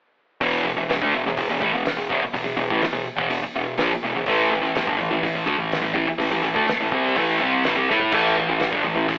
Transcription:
0.41 distorted electric guitar E2 B2 E3, kick, open hi-hat
0.65 distorted electric guitar E2 B2
0.76 distorted electric guitar E2 B2
0.89 distorted electric guitar E2 B2, snare, open hi-hat
1.02 distorted electric guitar D3 A3, kick
1.15 distorted electric guitar E2 B2
1.27 distorted electric guitar E2 B2, snare
1.37 distorted electric guitar E2 B2, kick, open hi-hat
1.50 distorted electric guitar E2 B2
1.60 distorted electric guitar A2 E3, kick
1.73 distorted electric guitar E2 B2
1.86 snare, open hi-hat
1.97 distorted electric guitar E2 B2
2.10 distorted electric guitar E2 B2, kick
2.23 muted distorted electric guitar stroke
2.33 distorted electric guitar E2 B2, kick, open hi-hat
2.44 distorted electric guitar E2 B2
2.57 distorted electric guitar E2 B2
2.70 distorted electric guitar A2 E3, kick, snare
2.82 muted distorted electric guitar stroke, snare, open hi-hat
2.93 distorted electric guitar E2 B2
3.05 muted distorted electric guitar stroke
3.16 distorted electric guitar E2 B2, kick, snare
3.30 distorted electric guitar E2 B2, open hi-hat
3.43 muted distorted electric guitar stroke
3.56 distorted electric guitar E2 B2
3.78 distorted electric guitar A#2 F3, snare, open hi-hat
3.91 muted distorted electric guitar stroke
4.03 distorted electric guitar E2 B2
4.15 distorted electric guitar E2 B2
4.26 distorted electric guitar A2 E3 A3, kick, open hi-hat
4.51 distorted electric guitar A2 E3
4.62 distorted electric guitar A2 E3, snare
4.75 distorted electric guitar A2 E3, snare, open hi-hat
4.87 distorted electric guitar G2 D3, kick
4.98 distorted electric guitar A2 E3
5.11 distorted electric guitar A2 E3
5.23 distorted electric guitar A2 E3, kick, open hi-hat
5.35 distorted electric guitar A2 E3
5.46 distorted electric guitar D3 A3, kick
5.58 distorted electric guitar A2 E3
5.72 snare, open hi-hat
5.82 distorted electric guitar A2 E3
5.94 distorted electric guitar A2 E3, kick
6.08 muted distorted electric guitar stroke
6.18 distorted electric guitar A2 E3, kick, open hi-hat
6.31 distorted electric guitar A2 E3
6.43 distorted electric guitar A2 E3
6.54 distorted electric guitar D3 A3, kick
6.68 muted distorted electric guitar stroke, snare, open hi-hat
6.80 distorted electric guitar A2 E3
6.92 distorted electric guitar C3 G3 C4, kick
7.06 snare
7.16 distorted electric guitar A2 E3 A3, kick, open hi-hat
7.40 distorted electric guitar C3 G3 C4
7.64 distorted electric guitar A2 E3, snare, open hi-hat
7.76 distorted electric guitar C3 G3
7.89 distorted electric guitar A3 E4 A4, snare
8.00 floor tom
8.12 distorted electric guitar A2 E3 A3, kick, crash
8.38 distorted electric guitar A2 E3
8.49 distorted electric guitar A2 E3
8.60 distorted electric guitar A2 E3, snare, open hi-hat
8.71 distorted electric guitar G2 D3, kick
8.84 distorted electric guitar A2 E3
8.95 distorted electric guitar A2 E3
9.08 distorted electric guitar A2 E3, kick, open hi-hat

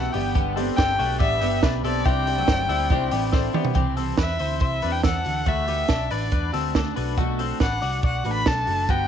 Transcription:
Already playing: steel-string acoustic guitar E3 G3 B3 F#4, clean electric guitar E4 A4, upright piano F#4 G4 E5, violin F#5
0.12 picked electric bass G1, clean electric guitar B3 G4, steel-string acoustic guitar D4 G4, upright piano G4 B4 D5, violin G5, open hi-hat
0.17 steel-string acoustic guitar G3 B3
0.35 steel-string acoustic guitar G2 D3 G3 B3 D4 G4, clean electric guitar B3 G4, kick, closed hi-hat
0.56 steel-string acoustic guitar G3 B3 D4 G4, clean electric guitar C4 A4, upright piano G4 B4 D5, open hi-hat
0.76 picked electric bass G1, steel-string acoustic guitar G3 B3 D4 G4, upright piano G4 B4 D5, violin G5, kick, snare, closed hi-hat
0.99 picked electric bass B1, clean electric guitar A3 F#4, upright piano G4 B4 D5, open hi-hat
1.19 picked electric bass A1, steel-string acoustic guitar G2 D3 G3 B3 D4 G4, clean electric guitar B3 G4, upright piano G4 B4 D5, violin E5, kick, closed hi-hat
1.40 picked electric bass G1, steel-string acoustic guitar G3 B3 D4 G4, clean electric guitar B3 G4, upright piano G4 B4 D5, open hi-hat
1.63 picked electric bass B1, clean electric guitar D4 B4, upright piano G4 B4 D5, kick, snare, closed hi-hat
1.84 picked electric bass B1, steel-string acoustic guitar G3 B3 D4 G4, clean electric guitar C4 A4, upright piano G4 B4 D5, violin D5, open hi-hat
2.05 picked electric bass C2, steel-string acoustic guitar C3 G3 C4 D4 E4, clean electric guitar C4 G4, upright piano E4 C5 D5, violin G5, kick, closed hi-hat
2.27 upright piano E4 C5 D5, open hi-hat
2.38 clean electric guitar F#3 A3
2.47 picked electric bass G1, steel-string acoustic guitar G3 C4 D4 E4, upright piano E4 C5 D5, kick, snare, closed hi-hat
2.69 picked electric bass D2, clean electric guitar G3 E4, upright piano E4 C5 D5, open hi-hat
2.90 picked electric bass C2, steel-string acoustic guitar C3 G3 C4 D4 E4, clean electric guitar C4 G4, upright piano E4 C5 D5, kick, closed hi-hat
3.11 picked electric bass A1, clean electric guitar B3 G4, steel-string acoustic guitar C4 D4 E4, upright piano E4 C5 D5, open hi-hat
3.32 clean electric guitar C4 A4, upright piano E4 C5 D5, kick, snare
3.53 clean electric guitar B3 G4, steel-string acoustic guitar C4 D4 E4, upright piano E4 C5 D5, mid tom
3.65 floor tom
3.74 picked electric bass C2, steel-string acoustic guitar C3 E3 G3 C4 E4, clean electric guitar C4 G4, kick, closed hi-hat
3.96 steel-string acoustic guitar G3 C4 E4, clean electric guitar C4 A4, open hi-hat
4.17 picked electric bass E2, steel-string acoustic guitar E3 G3 C4 E4, clean electric guitar E4 B4, violin E5, kick, snare, closed hi-hat
4.39 picked electric bass D2, clean electric guitar E4 C5, open hi-hat
4.60 picked electric bass C2, clean electric guitar E4 C5, violin E5, kick, closed hi-hat
4.81 picked electric bass E2, steel-string acoustic guitar G3 C4 E4, clean electric guitar D4 B4, open hi-hat
4.92 violin G5
5.02 picked electric bass E2, steel-string acoustic guitar E3 G3 C4 E4, clean electric guitar D4 A4, violin F#5, kick, snare, closed hi-hat
5.24 picked electric bass D2, steel-string acoustic guitar A3 D4 F#4, open hi-hat
5.46 picked electric bass D2, steel-string acoustic guitar D3 A3 D4 F#4, clean electric guitar A3 F#4, violin E5, kick, closed hi-hat
5.67 steel-string acoustic guitar A3 D4 F#4, clean electric guitar B3 G4, open hi-hat
5.88 picked electric bass B1, steel-string acoustic guitar D3 A3 D4 F#4, clean electric guitar D4 A4, kick, snare, closed hi-hat
6.11 picked electric bass A1, clean electric guitar D4 B4, violin D5, open hi-hat
6.32 picked electric bass E2, clean electric guitar D4 B4, kick, closed hi-hat
6.52 picked electric bass D2, steel-string acoustic guitar A3 D4 F#4, clean electric guitar C4 A4, open hi-hat
6.74 steel-string acoustic guitar D3 A3 D4 F#4, clean electric guitar D4 A4, kick, snare
6.96 picked electric bass B1, steel-string acoustic guitar A3 D4 F#4, clean electric guitar D4 B4, open hi-hat
7.17 steel-string acoustic guitar B2 F#3 A3 D4 F#4, clean electric guitar A3 F#4, kick, closed hi-hat
7.39 steel-string acoustic guitar A3 D4 F#4, clean electric guitar C4 A4, open hi-hat
7.60 picked electric bass A1, steel-string acoustic guitar F#3 A3 D4 F#4, clean electric guitar D4 B4, violin F#5, kick, snare, closed hi-hat
7.82 picked electric bass C2, clean electric guitar F#4 D5, open hi-hat
8.03 picked electric bass B1, clean electric guitar F#4 D5, violin F#5, kick, closed hi-hat
8.24 picked electric bass A1, steel-string acoustic guitar A3 D4 F#4, clean electric guitar D4 B4, open hi-hat
8.33 violin B5
8.46 picked electric bass B1, steel-string acoustic guitar F#3 A3 D4 F#4, clean electric guitar D4 A4, violin A5, kick, snare, closed hi-hat
8.66 picked electric bass F#1, steel-string acoustic guitar A3 D4 F#4, open hi-hat
8.88 picked electric bass G1, steel-string acoustic guitar G2 D3 G3 B3 D4 G4, clean electric guitar B3 F#4, violin G5, kick, closed hi-hat

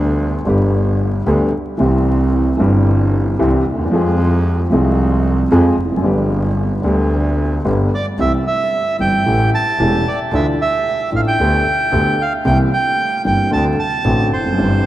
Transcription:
Already playing: double bass D2, upright piano D2 D3 G3 B3 G4
0.45 double bass G1, upright piano G1 G2 D3 G3 B3 G4
1.26 double bass D2, upright piano D2 D3 G3 B3 G4
1.78 double bass C2, upright piano C2 C3 E3 G3 C4
1.82 upright piano G4
2.57 upright piano G1 G2 E3 G3 C4, double bass G1
2.61 upright piano G4
3.39 upright piano C2 C3 E3 G3 C4 G4, double bass C2
3.65 double bass D#2
3.72 upright piano D2
3.79 upright piano D#2
3.85 upright piano E2
3.91 double bass F2, upright piano F2 F3 G#3 C4
3.95 upright piano G#4
4.70 double bass C2, upright piano C2 C3 F3 G#3 C4
4.74 upright piano G#4
5.51 double bass F2, upright piano F2 F3 G#3 C4 G#4
5.78 double bass F1
5.85 upright piano E2
5.92 upright piano F2
5.97 upright piano F#2
6.02 upright piano G1 G2 D3 G3 B3, double bass G1
6.06 upright piano G4
6.84 upright piano D2 D3 G3 B3 G4, double bass D2
7.65 upright piano G1 G2 D3 G3 B3 G4, double bass G1
7.95 bandoneon D5
8.18 double bass C2, upright piano C2 C3 E3 G3 C4 G4, bandoneon E5
8.47 bandoneon E5
8.99 double bass G1, upright piano G1 G2 E3 G3 C4 G4, bandoneon G5
9.26 upright piano A1 A2 E3 A3 C#4 G4, double bass A1
9.55 bandoneon A5
9.79 double bass E1, upright piano E1 E2 E3 A3 C#4 G4
10.08 bandoneon D5
10.32 double bass D2, upright piano D2 D3 E3 A3 D4 F4, bandoneon E5
10.61 bandoneon E5
11.12 double bass A1, upright piano A1 A2 E3 A3 D4 F4, bandoneon F5
11.28 bandoneon G5
11.38 double bass D2, upright piano D2 D3 A3 B3 G4
11.92 double bass D2, upright piano D2 D3 A3 B3 G4
12.22 bandoneon F5
12.45 upright piano C2 C3 E3 A#3 C4 G4, double bass C2, bandoneon G5
12.73 bandoneon G5
13.24 upright piano G1 G2 E3 A#3 C4 G4, double bass G1, bandoneon G5
13.51 upright piano D2 D3 A3 C4 F#4, double bass D2, bandoneon A5
13.79 bandoneon A5
14.05 upright piano A1 A2 D3 A3 C4 F#4, double bass A1
14.32 double bass F1, bandoneon C5
14.39 upright piano E2
14.46 upright piano F2
14.52 upright piano F#2
14.58 upright piano G1 G2 E3 G3 C4 G4, double bass G1

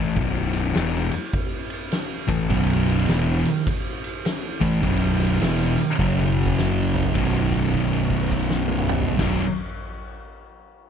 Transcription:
Already playing: picked electric bass A1, distorted electric guitar A2 E3 A3
0.16 picked electric bass B0, distorted electric guitar B1 F#2 B2, kick, ride
0.53 ride
0.72 picked electric bass E1, distorted electric guitar E2 B2 E3, snare, ride
0.95 snare
1.11 ride
1.33 kick, ride
1.70 ride
1.92 snare, ride
2.27 picked electric bass A1, distorted electric guitar A2 E3 A3, kick, ride
2.49 picked electric bass B0, distorted electric guitar B1 F#2 B2, kick, ride
2.87 ride
3.07 picked electric bass E1, distorted electric guitar E2 B2 E3, snare, ride
3.45 ride
3.58 snare
3.67 kick, ride
4.04 ride
4.25 snare, ride
4.60 picked electric bass A1, distorted electric guitar A2 E3 A3, kick, ride
4.82 picked electric bass B0, distorted electric guitar B1 F#2 B2, kick, ride
5.20 ride
5.41 picked electric bass E1, distorted electric guitar E2 B2 E3, snare, ride
5.61 snare
5.78 ride
5.99 picked electric bass F#1, distorted electric guitar F#2 C#3 F#3, kick
6.17 high tom
6.46 kick
6.59 snare
6.94 floor tom
7.05 floor tom
7.13 picked electric bass B0, distorted electric guitar B1 F#2, kick, crash
7.17 distorted electric guitar B2
7.52 kick, crash
7.64 crash
7.74 kick, crash
7.93 crash
8.10 kick, crash
8.22 crash
8.32 kick, crash
8.50 snare
8.68 high tom
8.78 mid tom
8.89 mid tom
9.08 floor tom
9.17 picked electric bass B0, distorted electric guitar B1 F#2 B2, kick, snare, crash

